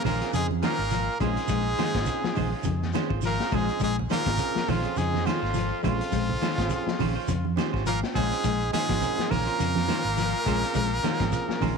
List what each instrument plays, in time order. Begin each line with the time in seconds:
0.04 fingered electric bass A#1, baritone saxophone A#2, clean electric guitar D#3 G#3 C#4 F4 C5, tenor saxophone A#3, trumpet A#4, open hi-hat, high conga, low conga, shekere
0.20 tine electric piano C4 C#4 F4 G#4, snare, closed hi-hat
0.33 fingered electric bass F2, baritone saxophone G#2, clean electric guitar C#3, tenor saxophone G#3, trumpet G#4, closed hi-hat, shekere
0.51 high conga
0.62 baritone saxophone A#2, clean electric guitar D#3 G#3 C#4 F4 C5, tenor saxophone A#3, trumpet A#4, snare, closed hi-hat, high conga, shekere
0.79 fingered electric bass G#1
0.91 clean electric guitar F3, closed hi-hat, shekere
1.20 fingered electric bass A#1, baritone saxophone G#2, clean electric guitar G#3 C#4 F4 C5, tine electric piano C4 C#4 F4 G#4, trumpet G#4, kick, closed hi-hat, low conga, shekere
1.24 tenor saxophone G#3
1.37 closed hi-hat
1.48 fingered electric bass A#1, clean electric guitar G#3, kick, closed hi-hat, shekere
1.78 clean electric guitar D#3 G#3 C#4 F4 C5, muted fingered electric bass stroke, snare, closed hi-hat, high conga, shekere
1.94 fingered electric bass G#1, tine electric piano C4 C#4 F4 G#4, kick, snare, closed hi-hat
2.06 kick, closed hi-hat, shekere
2.24 clean electric guitar F3, muted fingered electric bass stroke, snare
2.35 fingered electric bass A#1, clean electric guitar D#3 G#3 F4 C5, open hi-hat, high conga, low conga, shekere
2.53 clean electric guitar C#4 F4
2.63 fingered electric bass F2, clean electric guitar C#3, kick, closed hi-hat, shekere
2.82 snare, high conga
2.93 clean electric guitar D#3 G#3 C#4 F4 C5, tine electric piano C4 C#4 F4 G#4, snare, closed hi-hat, high conga, shekere
3.10 fingered electric bass G#1, clean electric guitar F4 C5, kick
3.22 clean electric guitar F3, closed hi-hat, shekere
3.26 baritone saxophone A#2, tenor saxophone A#3, trumpet A#4
3.39 tine electric piano C4 C#4 F4 G#4, snare
3.51 fingered electric bass A#1, baritone saxophone G#2, clean electric guitar G#3 C#4 F4 C5, trumpet G#4, kick, closed hi-hat, high conga, low conga, shekere
3.55 tenor saxophone G#3
3.68 closed hi-hat
3.80 fingered electric bass A#1, baritone saxophone G#2, clean electric guitar G#3, kick, closed hi-hat, shekere
3.84 tenor saxophone G#3, trumpet G#4
3.99 low conga
4.09 baritone saxophone A#2, clean electric guitar D#3 G#3 C#4 F4 C5, tenor saxophone A#3, trumpet A#4, muted fingered electric bass stroke, snare, closed hi-hat, high conga, shekere
4.26 fingered electric bass G#1, tine electric piano C4 C#4 F4 G#4, kick, snare, closed hi-hat
4.37 tine electric piano C4 C#4 F4 G#4, kick, closed hi-hat, shekere
4.55 clean electric guitar F3, muted fingered electric bass stroke, snare
4.68 fingered electric bass A#1, baritone saxophone F2, clean electric guitar D#3 G#3 C#4 F4 C5, tenor saxophone F3, trumpet F4, snare, open hi-hat, high conga, low conga, shekere
4.83 tine electric piano C4 C#4 F4 G#4, closed hi-hat
4.96 fingered electric bass F2, baritone saxophone G#2, clean electric guitar C#3, tenor saxophone G#3, trumpet G#4, closed hi-hat, shekere
5.14 snare, high conga
5.25 baritone saxophone F2, clean electric guitar D#3 G#3 C#4 F4 C5, tenor saxophone F3, trumpet F4, snare, closed hi-hat, high conga, shekere
5.42 fingered electric bass G#1, clean electric guitar C#4 C5, snare
5.54 clean electric guitar F3, closed hi-hat, shekere
5.83 fingered electric bass A#1, baritone saxophone F2, tenor saxophone F3, clean electric guitar G#3 C#4 F4 C5, tine electric piano C4 C#4 F4 G#4, trumpet F4, kick, closed hi-hat, high conga, low conga, shekere
6.01 closed hi-hat
6.12 fingered electric bass A#1, clean electric guitar G#3, kick, snare, closed hi-hat, shekere
6.29 low conga
6.41 clean electric guitar D#3 G#3 C#4 F4 C5, muted fingered electric bass stroke, snare, closed hi-hat, high conga, shekere
6.58 fingered electric bass G#1, tine electric piano C4 C#4 F4 G#4, kick, snare, closed hi-hat
6.70 kick, closed hi-hat, shekere
6.87 clean electric guitar F3, muted fingered electric bass stroke, snare
6.99 fingered electric bass A#1, clean electric guitar D#3 C#4 F4 C5, muted clean electric guitar stroke, open hi-hat, high conga, low conga, shekere
7.15 clean electric guitar C#4 F4 C5
7.28 fingered electric bass F2, clean electric guitar C#3, kick, closed hi-hat, shekere
7.45 high conga
7.56 clean electric guitar D#3 G#3 C#4 F4 C5, tine electric piano C4 C#4 F4 G4, snare, closed hi-hat, high conga, shekere
7.73 fingered electric bass G#1, clean electric guitar C#4 F4 C5, kick, snare
7.86 baritone saxophone A#2, clean electric guitar F3, tenor saxophone A#3, trumpet A#4, closed hi-hat, shekere
8.02 tine electric piano C4 C#4 F4 G5, snare
8.15 fingered electric bass A#1, baritone saxophone G#2, clean electric guitar G#3 C#4 F4 C5, tenor saxophone G#3, trumpet G#4, muted clean electric guitar stroke, kick, closed hi-hat, low conga, shekere
8.31 closed hi-hat
8.44 fingered electric bass A#1, clean electric guitar G#3, kick, snare, closed hi-hat, shekere
8.72 baritone saxophone G#2, clean electric guitar D#3 G#3 C#4 F4 C5, tenor saxophone G#3, trumpet G#4, muted fingered electric bass stroke, snare, closed hi-hat, high conga, shekere
8.89 fingered electric bass G#1, tine electric piano C4 C#4 F4 G#4, kick, snare, closed hi-hat, high conga
9.01 tine electric piano C4 C#4 F4 A#4, kick, closed hi-hat, shekere
9.18 clean electric guitar F3, muted fingered electric bass stroke, snare
9.30 fingered electric bass A#1, baritone saxophone A#2, clean electric guitar D#3 G#3 C#4 F4 C5, tenor saxophone A#3, trumpet A#4, open hi-hat, high conga, low conga, shekere
9.46 tine electric piano C4 C#4 F4 A#4, clean electric guitar C#4 F4 C5, closed hi-hat
9.59 fingered electric bass F2, clean electric guitar C#3, closed hi-hat, shekere
9.75 snare, high conga
9.88 clean electric guitar D#3 G#3 C#4 F4 C5, snare, closed hi-hat, high conga, shekere
10.05 fingered electric bass G#1
10.17 clean electric guitar F3, snare, closed hi-hat, shekere
10.45 fingered electric bass A#1, clean electric guitar G#3 C#4 C5, tine electric piano C4 C#4 F4 G#4, muted clean electric guitar stroke, kick, snare, closed hi-hat, low conga, shekere
10.62 closed hi-hat
10.75 fingered electric bass A#1, clean electric guitar G#3, kick, closed hi-hat, shekere
11.03 clean electric guitar D#3 G#3 C#4 F4 C5, muted fingered electric bass stroke, snare, closed hi-hat, high conga, shekere
11.19 fingered electric bass G#1, tine electric piano C4 C#4 F4 G#4, kick, snare, closed hi-hat, high conga
11.32 kick, closed hi-hat, shekere
11.48 clean electric guitar F3, muted fingered electric bass stroke, snare
11.60 fingered electric bass A#1, clean electric guitar D#3 G#3 C#4 F4 C5, snare, open hi-hat, high conga, low conga, shekere